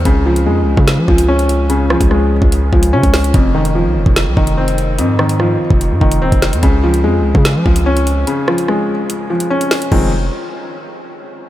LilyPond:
<<
  \new Staff \with { instrumentName = "Felt piano" } { \clef bass \time 4/4 \key f \minor \tempo 4 = 146 des8 f8 aes4. f8 des'4 | des8 f8 aes4. f8 des'4 | f,8 ees8 f4. ees8 c'4 | f,8 ees8 f4. ees8 c'4 |
des8 f8 aes4. f8 des'4 | des8 f8 aes4. f8 des'4 | <ees f aes c'>8 r2. r8 | }
  \new Staff \with { instrumentName = "808-style bass" } { \clef bass \time 4/4 \key f \minor des,4 f,16. des,16. des8 f16 des,4.~ | des,8. des,4 des,8. des,8 des16 des,8. | f,,4~ f,,16 c,16 f,,16 f,,8 c,16 f,,4. | aes,4. r16 f,,8 aes,16 f,,8 ees,,16 f,,8 f,16 |
des,4 f,16. des,16. des8 f16 des,4. | r1 | f,,4 r2. | }
  \new DrumStaff \with { instrumentName = "Drums" } \drummode { \time 4/4 <hh bd>8. hh16 r8. bd16 <hh sn>8 bd16 hh16 r16 hh16 hh8 | hh8 ss16 <hh bd>16 ss8. bd16 hh8 bd16 hh16 r16 <hh bd>16 <hho sn>16 hh16 | <hh bd>8. hh16 r8. bd16 <hh sn>8 bd16 hh16 r16 hh16 hh8 | hh8 ss16 hh16 ss8. bd16 hh8 bd16 hh16 r16 <hh bd>16 <hh sn>16 hh16 |
<hh bd>8. hh16 r8. bd16 <hh sn>8 bd16 hh16 r16 hh16 hh8 | hh8 ss16 hh16 ss4 hh8. hh16 r16 hh16 <hho sn>16 hh16 | <cymc bd>4 r4 r4 r4 | }
>>